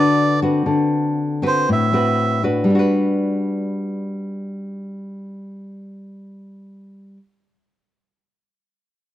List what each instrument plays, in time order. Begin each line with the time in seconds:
Already playing: nylon-string guitar D3 D4 F#4 B4, melodica D5
0.42 nylon-string guitar C4 F#4 B4
0.66 nylon-string guitar D3
1.42 nylon-string guitar C4 F#4 B4
1.47 melodica C5
1.69 nylon-string guitar A2, melodica E5
1.93 nylon-string guitar C4 F#4 B4
2.43 nylon-string guitar D4 F#4 B4
2.64 nylon-string guitar G3
2.70 nylon-string guitar D4
2.75 nylon-string guitar F#4
2.79 nylon-string guitar B4